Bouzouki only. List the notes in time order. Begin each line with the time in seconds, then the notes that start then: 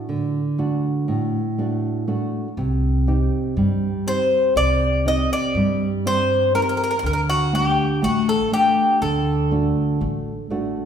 Already playing: D5
4.08 C5
4.57 D5
5.08 D#5
5.33 D5
6.07 C5
6.55 A#4
6.62 A#4
6.69 A#4
6.77 A#4
6.84 A#4
6.91 A#4
6.99 A#4
7.06 A#4
7.13 A#4
7.30 F#4
7.55 G4
8.04 F#4
8.29 A4
8.54 G4
9.02 A4